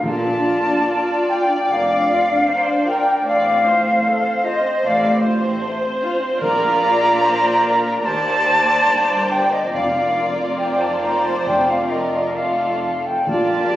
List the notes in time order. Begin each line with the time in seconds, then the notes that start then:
0.01 A#1 A#2 A#3 F4 D5 A5
0.23 D4
0.45 F4
0.66 D4
0.86 A#3
1.07 D4
1.27 F4 G5
1.48 D4
1.69 F1 F2 A#3 D5 F5
1.90 D4
2.08 F4
2.28 D4
2.47 A#3 C5
2.68 D4
2.86 F4 A#4 G5
3.04 D4
3.24 A1 A2 A3 C4 C5 D5 F5
3.46 C4
3.65 F4 C5
3.84 C4
4.05 A3 A4
4.24 C4
4.44 F4 C5 D#5
4.63 C4
4.82 A1 A2 A3 D5 F5
5.05 C4
5.24 F4 C5
5.44 C4
5.64 A3
5.82 C4
6.02 F4
6.19 C4
6.39 A#1 A#2 A#3 F4 A#4 D5 A#5
6.83 D5
7.24 C5
7.64 A#4
8.02 D#2 A#3 G4 C5 D5 A5
8.87 G1 G2
9.31 G5
9.52 D#5
9.72 F1 F2 A#3 F4 D5 F5
10.57 C5 G5
10.80 A5
11.03 A#5
11.24 A5
11.46 F1 F2 A3 F4 G5
11.70 F5
11.89 A#4 D#5
12.33 A3 F4 A4 F5
13.06 G5
13.26 A#1 A#2 A#3 F4 D5 A5
13.69 G4